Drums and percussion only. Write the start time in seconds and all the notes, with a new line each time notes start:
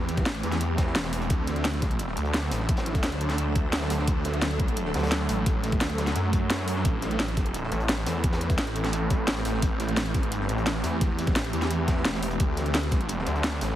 0.09 closed hi-hat
0.17 kick, snare, closed hi-hat
0.26 snare, closed hi-hat
0.35 snare, closed hi-hat
0.43 closed hi-hat
0.52 snare, closed hi-hat
0.61 closed hi-hat
0.78 kick, snare, closed hi-hat
0.87 snare
0.95 snare, closed hi-hat
1.04 snare, closed hi-hat
1.12 snare, open hi-hat
1.22 closed hi-hat
1.30 kick, closed hi-hat
1.47 snare, closed hi-hat
1.56 closed hi-hat
1.64 snare, closed hi-hat
1.73 closed hi-hat
1.82 kick, snare, closed hi-hat
1.91 closed hi-hat
1.99 closed hi-hat
2.08 snare
2.17 closed hi-hat
2.25 closed hi-hat
2.34 snare, closed hi-hat
2.43 snare
2.50 snare, closed hi-hat, open hi-hat
2.60 snare
2.69 kick, closed hi-hat
2.77 snare, closed hi-hat
2.86 snare, closed hi-hat
2.95 kick, closed hi-hat
3.03 snare, closed hi-hat
3.12 snare, closed hi-hat
3.20 closed hi-hat
3.30 snare, closed hi-hat
3.38 closed hi-hat
3.56 kick, closed hi-hat
3.73 snare, closed hi-hat
3.77 snare, closed hi-hat
3.81 snare, closed hi-hat
3.90 snare, closed hi-hat, open hi-hat
3.99 snare
4.07 kick, closed hi-hat
4.25 snare, closed hi-hat
4.34 closed hi-hat
4.42 snare, closed hi-hat
4.51 closed hi-hat
4.60 kick, closed hi-hat
4.68 closed hi-hat
4.76 closed hi-hat
4.85 snare
4.94 snare, closed hi-hat
4.98 snare, closed hi-hat
5.03 snare, closed hi-hat
5.07 snare, closed hi-hat
5.12 snare, closed hi-hat
5.20 snare
5.29 closed hi-hat, open hi-hat
5.46 kick, closed hi-hat
5.63 snare, closed hi-hat
5.72 kick, closed hi-hat
5.81 snare, closed hi-hat
5.90 snare, closed hi-hat
5.98 snare, closed hi-hat
6.07 snare, closed hi-hat
6.15 snare, closed hi-hat
6.33 kick, closed hi-hat
6.50 snare, closed hi-hat
6.59 snare
6.68 closed hi-hat, open hi-hat
6.76 snare
6.85 kick, closed hi-hat
7.02 snare, closed hi-hat
7.11 closed hi-hat
7.19 snare, closed hi-hat
7.28 closed hi-hat
7.37 kick, snare, closed hi-hat
7.46 closed hi-hat
7.54 closed hi-hat
7.63 snare
7.72 closed hi-hat
7.80 closed hi-hat
7.89 snare, closed hi-hat
7.98 snare
8.06 snare, closed hi-hat, open hi-hat
8.16 snare
8.24 kick, closed hi-hat
8.33 snare, closed hi-hat
8.41 snare, closed hi-hat
8.50 kick, closed hi-hat
8.58 snare, closed hi-hat
8.67 snare, closed hi-hat
8.75 closed hi-hat
8.84 snare, closed hi-hat
8.93 closed hi-hat
9.10 kick, closed hi-hat
9.27 snare, closed hi-hat
9.32 snare, closed hi-hat
9.37 snare, closed hi-hat
9.45 snare, closed hi-hat, open hi-hat
9.54 snare
9.62 kick, closed hi-hat
9.80 snare, closed hi-hat
9.88 closed hi-hat
9.97 snare, closed hi-hat
10.06 closed hi-hat
10.14 kick, snare, closed hi-hat
10.23 closed hi-hat
10.32 closed hi-hat
10.41 snare
10.49 closed hi-hat
10.58 closed hi-hat
10.66 snare, closed hi-hat
10.75 snare
10.83 snare, closed hi-hat, open hi-hat
11.01 kick, snare, closed hi-hat
11.19 closed hi-hat
11.27 kick, snare, closed hi-hat
11.35 snare, closed hi-hat
11.45 snare, closed hi-hat
11.53 closed hi-hat
11.62 snare, closed hi-hat
11.71 closed hi-hat
11.88 kick, snare, closed hi-hat
11.97 snare
12.05 snare, closed hi-hat
12.14 snare, closed hi-hat
12.22 snare, open hi-hat
12.31 closed hi-hat
12.40 kick, closed hi-hat
12.57 snare, closed hi-hat
12.66 closed hi-hat
12.74 snare, closed hi-hat
12.83 closed hi-hat
12.91 kick, snare, closed hi-hat
13.01 closed hi-hat
13.09 closed hi-hat
13.19 snare
13.26 closed hi-hat
13.36 closed hi-hat
13.44 snare, closed hi-hat
13.53 snare
13.61 snare, closed hi-hat, open hi-hat
13.70 snare